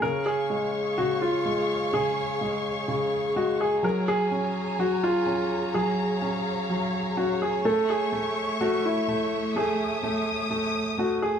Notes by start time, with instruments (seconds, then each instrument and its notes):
0.02 grand piano C#3 A#4, string section G#4 C#5 F5 C#6
0.26 grand piano G#4
0.50 grand piano G#3
0.98 grand piano C#3 F#4
1.22 grand piano F4
1.46 grand piano G#3
1.93 grand piano C#3 G#4
2.41 grand piano G#3
2.88 grand piano C#3
3.36 grand piano G#3 F#4
3.61 grand piano G#4
3.83 grand piano F#3 A#4, string section C#5 G#5 A#5
4.08 grand piano G#4
4.31 grand piano C#4
4.79 grand piano F#3 F#4
5.04 grand piano F4
5.26 grand piano C#4
5.74 grand piano F#3 G#4, string section F5
6.22 grand piano C#4
6.70 grand piano F#3
7.17 grand piano C#4 F#4
7.42 grand piano G#4
7.65 grand piano A3 A4, string section A3 E5 C#6
7.90 grand piano G#4
8.13 grand piano A3
8.61 grand piano A3 F#4
8.85 grand piano E4
9.08 grand piano A3
9.56 grand piano A3 G#4, string section D#6
10.03 grand piano A3
10.51 grand piano A3
10.98 grand piano A3 F#4
11.22 grand piano G#4